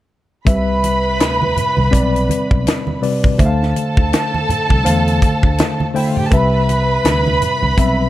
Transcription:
0.45 C2 C3 G3 B4 E5 B5, kick, closed hi-hat
0.84 closed hi-hat, muted conga
1.20 D2, snare, closed hi-hat
1.42 high conga
1.56 closed hi-hat, muted conga, low conga
1.77 C2, high conga
1.91 B1 G3 C4 B4 D5, kick, closed hi-hat, muted conga
2.16 closed hi-hat
2.29 closed hi-hat, muted conga, high conga
2.51 B1, kick
2.67 snare, closed hi-hat, high conga
2.87 high conga
3.02 C3 G3 B4 D5, open hi-hat, muted conga
3.23 kick, low conga
3.38 D2 D3 A3 A4 C5 E5 A5, kick, closed hi-hat, muted conga
3.46 F5
3.63 snare
3.76 closed hi-hat, muted conga
3.97 D2, kick
4.13 snare, closed hi-hat, muted conga
4.34 high conga
4.49 muted fingered electric bass stroke, closed hi-hat, muted conga, low conga
4.69 C2, kick, high conga
4.84 E2 D3 A3 C5 F5, closed hi-hat, muted conga
5.08 closed hi-hat
5.22 kick, closed hi-hat, muted conga, high conga
5.43 D2, kick
5.58 snare, closed hi-hat, muted conga, high conga
5.80 high conga
5.94 D3 A3 E4 C5 E5 G5, open hi-hat, muted conga
6.07 F4 F5
6.17 G4 G5, low conga
6.25 A4 A5
6.31 C2 C3 G3 B4 E5 B5, kick, closed hi-hat, muted conga
6.69 closed hi-hat, muted conga
7.05 D2, snare, closed hi-hat, muted conga
7.27 high conga
7.42 closed hi-hat, low conga
7.62 C2, high conga
7.77 B1 G3 C4 B4 E5, kick, closed hi-hat, muted conga

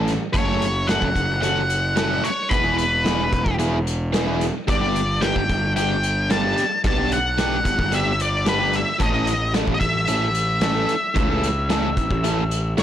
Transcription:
Already playing: A1 E3 A3 C#4 A4
0.08 snare, closed hi-hat
0.33 F#1 F#3 A3 C#4 A4 C#5, kick, closed hi-hat
0.47 F#3 A3 C#4 A4
0.62 closed hi-hat
0.87 F#3 A3 C#4 A4 F#5, snare, closed hi-hat
1.02 F#1, kick
1.16 F#1, kick, closed hi-hat
1.41 F#3 A3 C#4 A4 F#5, closed hi-hat
1.70 closed hi-hat
1.96 F#3 A3 C#4 A4, snare, closed hi-hat
2.10 F#3 A3 C#4 A4
2.24 C#5, closed hi-hat
2.49 E1 E3 B3 E4 G#4 B4, kick, closed hi-hat
2.65 E3 B3 E4 G#4
2.78 B4, closed hi-hat
3.04 E3 B3 E4 G#4, snare, closed hi-hat
3.33 E1, kick, closed hi-hat
3.46 E1, kick
3.59 E3 B3 E4 G#4, closed hi-hat
3.87 closed hi-hat
4.13 E3 B3 E4 G#4, snare, closed hi-hat
4.27 E3 B3 E4 G#4
4.41 snare, closed hi-hat
4.67 G1 G3 B3 D4 G4 D5, kick, closed hi-hat
4.81 G3 B3 D4 G4
4.96 closed hi-hat
5.21 G3 B3 D4 G4 G5, snare, closed hi-hat
5.36 G1, kick
5.50 G1, kick, closed hi-hat
5.76 G3 B3 D4 G4 G5, closed hi-hat
6.03 closed hi-hat
6.30 G3 B3 D4 G4 A5, snare, closed hi-hat
6.44 G3 B3 D4 G4
6.58 snare, closed hi-hat
6.84 B1 G3 B3 D4 G4 A5, kick, closed hi-hat
6.98 G3 B3 D4 G4
7.12 F#5, closed hi-hat
7.38 G3 B3 D4 G4, snare, closed hi-hat
7.65 G1, kick, closed hi-hat
7.79 G1, kick
7.92 G3 B3 D4 G4 E5, closed hi-hat
8.20 D5, closed hi-hat
8.46 G3 B3 D4 G4 B4, snare, closed hi-hat
8.59 G3 B3 D4 G4
8.73 E5, snare, closed hi-hat
8.99 A1 E3 A3 C#4 A4 D#5, kick, closed hi-hat
9.13 E3 A3 C#4 A4
9.27 closed hi-hat
9.54 E3 A3 C#4 A4, snare, closed hi-hat
9.68 A1, kick
9.74 D#5
9.80 A1 E5, kick, closed hi-hat
10.07 E3 A3 C#4 A4, closed hi-hat
10.35 closed hi-hat
10.61 E3 A3 C#4 A4, snare, closed hi-hat
10.75 E3 A3 C#4 A4
10.89 closed hi-hat
11.14 C#2 E3 A3 C#4 A4, kick, closed hi-hat
11.29 E3 A3 C#4 A4
11.44 closed hi-hat
11.70 E3 A3 C#4 A4, snare, closed hi-hat
11.97 A1, kick, closed hi-hat
12.11 A1, kick
12.24 E3 A3 C#4 A4, closed hi-hat
12.51 closed hi-hat
12.78 F#1 E3 A3 C#4 A4 C#5, snare, closed hi-hat

